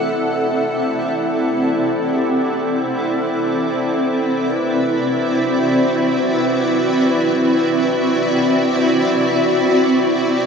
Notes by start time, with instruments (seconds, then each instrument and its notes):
Already playing: ambient pad C4 E4 A4 D5 F#5, shakuhachi E5
2.13 shakuhachi G4
2.60 shakuhachi A4
3.07 ambient pad E5
4.02 ambient pad F#4
4.47 shakuhachi B4
5.40 shakuhachi C5
6.34 shakuhachi B4
10.15 ambient pad A2